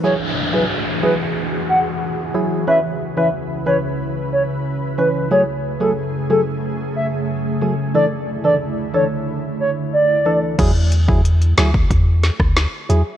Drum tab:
CC |----------------|----------------|----------------|----------------|
HH |----------------|----------------|----------------|----------------|
SD |----------------|----------------|----------------|----------------|
BD |----------------|----------------|----------------|----------------|

CC |x---------------|
HH |x-x-xxx-x-x-x-x-|
SD |------o---oro---|
BD |o--o---oo--o----|